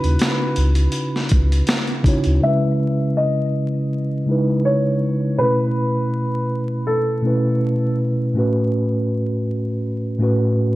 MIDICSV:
0, 0, Header, 1, 5, 480
1, 0, Start_track
1, 0, Key_signature, 4, "minor"
1, 0, Tempo, 740741
1, 1569, Time_signature, 4, 2, 24, 8
1, 6972, End_track
2, 0, Start_track
2, 0, Title_t, "Felt piano"
2, 0, Program_c, 0, 0
2, 0, Note_on_c, 0, 71, 80
2, 1306, Note_off_c, 0, 71, 0
2, 1577, Note_on_c, 0, 76, 98
2, 2054, Note_on_c, 0, 75, 90
2, 2067, Note_off_c, 0, 76, 0
2, 3014, Note_on_c, 0, 73, 81
2, 3040, Note_off_c, 0, 75, 0
2, 3489, Note_on_c, 0, 71, 79
2, 3506, Note_off_c, 0, 73, 0
2, 4450, Note_on_c, 0, 69, 70
2, 4478, Note_off_c, 0, 71, 0
2, 5143, Note_off_c, 0, 69, 0
2, 6972, End_track
3, 0, Start_track
3, 0, Title_t, "Tine electric piano"
3, 0, Program_c, 1, 4
3, 0, Control_c, 1, 64, 127
3, 0, Note_on_c, 1, 49, 70
3, 0, Note_on_c, 1, 61, 66
3, 0, Note_on_c, 1, 63, 67
3, 0, Note_on_c, 1, 64, 66
3, 0, Note_on_c, 1, 66, 70
3, 0, Note_on_c, 1, 71, 72
3, 271, Note_off_c, 1, 49, 0
3, 274, Note_off_c, 1, 61, 0
3, 277, Note_off_c, 1, 63, 0
3, 281, Note_off_c, 1, 64, 0
3, 285, Note_off_c, 1, 66, 0
3, 288, Note_off_c, 1, 71, 0
3, 1315, Note_on_c, 1, 49, 84
3, 1323, Note_on_c, 1, 61, 82
3, 1330, Note_on_c, 1, 63, 82
3, 1337, Note_on_c, 1, 64, 78
3, 1344, Note_on_c, 1, 66, 77
3, 1351, Note_on_c, 1, 73, 100
3, 1484, Note_off_c, 1, 49, 0
3, 1488, Note_off_c, 1, 61, 0
3, 1491, Note_off_c, 1, 63, 0
3, 1495, Note_off_c, 1, 64, 0
3, 1498, Note_off_c, 1, 66, 0
3, 1502, Note_off_c, 1, 73, 0
3, 1564, Note_on_c, 1, 49, 72
3, 1571, Note_on_c, 1, 56, 68
3, 1577, Control_c, 1, 64, 0
3, 1581, Note_on_c, 1, 61, 66
3, 1590, Note_on_c, 1, 64, 61
3, 1599, Note_on_c, 1, 71, 75
3, 1704, Control_c, 1, 64, 127
3, 2185, Note_off_c, 1, 49, 0
3, 2189, Note_off_c, 1, 56, 0
3, 2193, Note_off_c, 1, 61, 0
3, 2198, Note_off_c, 1, 64, 0
3, 2202, Note_off_c, 1, 71, 0
3, 2759, Note_on_c, 1, 49, 68
3, 2767, Note_on_c, 1, 56, 69
3, 2777, Note_on_c, 1, 63, 64
3, 2785, Note_on_c, 1, 64, 67
3, 2794, Note_on_c, 1, 71, 80
3, 3221, Note_off_c, 1, 49, 0
3, 3225, Note_off_c, 1, 56, 0
3, 3230, Note_off_c, 1, 63, 0
3, 3234, Note_off_c, 1, 64, 0
3, 3238, Note_off_c, 1, 71, 0
3, 3488, Note_on_c, 1, 47, 71
3, 3497, Control_c, 1, 64, 0
3, 3498, Note_on_c, 1, 57, 62
3, 3506, Note_on_c, 1, 61, 61
3, 3515, Note_on_c, 1, 64, 64
3, 3523, Note_on_c, 1, 71, 79
3, 3623, Control_c, 1, 64, 127
3, 4107, Note_off_c, 1, 47, 0
3, 4112, Note_off_c, 1, 57, 0
3, 4116, Note_off_c, 1, 61, 0
3, 4121, Note_off_c, 1, 64, 0
3, 4125, Note_off_c, 1, 71, 0
3, 4675, Note_on_c, 1, 47, 76
3, 4683, Note_on_c, 1, 57, 63
3, 4692, Note_on_c, 1, 61, 65
3, 4701, Note_on_c, 1, 64, 68
3, 4709, Note_on_c, 1, 71, 76
3, 5139, Note_off_c, 1, 47, 0
3, 5143, Note_off_c, 1, 57, 0
3, 5147, Note_off_c, 1, 61, 0
3, 5151, Note_off_c, 1, 64, 0
3, 5156, Note_off_c, 1, 71, 0
3, 5402, Note_on_c, 1, 45, 71
3, 5411, Note_on_c, 1, 57, 68
3, 5417, Control_c, 1, 64, 0
3, 5420, Note_on_c, 1, 61, 66
3, 5428, Note_on_c, 1, 66, 66
3, 5437, Note_on_c, 1, 71, 81
3, 5521, Control_c, 1, 64, 127
3, 6024, Note_off_c, 1, 45, 0
3, 6029, Note_off_c, 1, 57, 0
3, 6033, Note_off_c, 1, 61, 0
3, 6037, Note_off_c, 1, 66, 0
3, 6042, Note_off_c, 1, 71, 0
3, 6597, Note_on_c, 1, 45, 73
3, 6604, Note_on_c, 1, 57, 68
3, 6613, Note_on_c, 1, 61, 66
3, 6622, Note_on_c, 1, 66, 72
3, 6631, Note_on_c, 1, 71, 81
3, 6972, Note_off_c, 1, 45, 0
3, 6972, Note_off_c, 1, 57, 0
3, 6972, Note_off_c, 1, 61, 0
3, 6972, Note_off_c, 1, 66, 0
3, 6972, Note_off_c, 1, 71, 0
3, 6972, End_track
4, 0, Start_track
4, 0, Title_t, "Sub bass"
4, 0, Program_c, 2, 38
4, 26, Note_on_c, 2, 39, 82
4, 112, Note_off_c, 2, 39, 0
4, 371, Note_on_c, 2, 37, 102
4, 569, Note_off_c, 2, 37, 0
4, 855, Note_on_c, 2, 37, 82
4, 1051, Note_off_c, 2, 37, 0
4, 1464, Note_on_c, 2, 38, 88
4, 1551, Note_off_c, 2, 38, 0
4, 6972, End_track
5, 0, Start_track
5, 0, Title_t, "Drums"
5, 25, Note_on_c, 9, 42, 43
5, 90, Note_off_c, 9, 42, 0
5, 125, Note_on_c, 9, 42, 85
5, 140, Note_on_c, 9, 38, 92
5, 190, Note_off_c, 9, 42, 0
5, 205, Note_off_c, 9, 38, 0
5, 363, Note_on_c, 9, 42, 66
5, 428, Note_off_c, 9, 42, 0
5, 487, Note_on_c, 9, 42, 47
5, 552, Note_off_c, 9, 42, 0
5, 595, Note_on_c, 9, 42, 83
5, 660, Note_off_c, 9, 42, 0
5, 751, Note_on_c, 9, 38, 31
5, 815, Note_off_c, 9, 38, 0
5, 837, Note_on_c, 9, 42, 68
5, 853, Note_on_c, 9, 36, 91
5, 901, Note_off_c, 9, 42, 0
5, 918, Note_off_c, 9, 36, 0
5, 986, Note_on_c, 9, 42, 48
5, 1051, Note_off_c, 9, 42, 0
5, 1081, Note_on_c, 9, 42, 73
5, 1093, Note_on_c, 9, 38, 107
5, 1146, Note_off_c, 9, 42, 0
5, 1158, Note_off_c, 9, 38, 0
5, 1215, Note_on_c, 9, 42, 36
5, 1279, Note_off_c, 9, 42, 0
5, 1324, Note_on_c, 9, 36, 87
5, 1334, Note_on_c, 9, 42, 68
5, 1388, Note_off_c, 9, 36, 0
5, 1399, Note_off_c, 9, 42, 0
5, 1450, Note_on_c, 9, 42, 40
5, 1515, Note_off_c, 9, 42, 0
5, 6972, End_track
0, 0, End_of_file